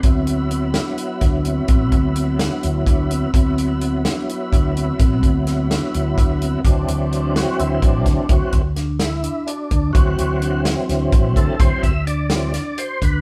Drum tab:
HH |xxxxxxx|xxxxxxx|xxxxxxx|xxxxxxx|
SD |---o-o-|---o---|---o---|--oo---|
BD |o----o-|oo---o-|o----o-|oo---o-|

HH |xxxxxxx|xxxxxxx|xxxxxxx|xxxxxxx|
SD |---o--o|--oo---|---oo--|---oo--|
BD |o----oo|oo----o|o----oo|oo----o|